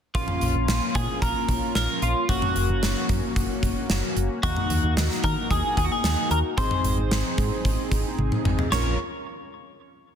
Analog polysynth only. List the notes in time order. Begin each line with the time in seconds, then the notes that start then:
0.15 A#3 C#4 F4
2.29 A#3 C#4 F#4
4.43 A#3 D#4 F#4
6.57 C4 D#4 G#4
8.72 C#4 F4 A#4